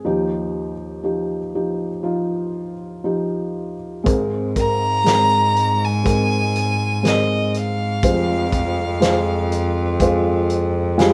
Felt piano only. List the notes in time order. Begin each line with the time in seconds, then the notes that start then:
0.05 D#2 F3 D#4 G4
1.03 F3 D#4 G4
1.55 F3 D#4 G4
2.03 F3 D#4 F4
3.04 F3 D#4 G4
4.04 G#1 G#2 G#3 C4 A#4
5.04 G#3 C4 A#4
6.04 G#3 C4 A#4
7.03 G#3 C4 A#4
8.03 F1 F2 G#3 F4 C5
9.00 G#3 F4 C5
10.01 G#3 F4 C5
10.98 G3 G#3 F4 G#5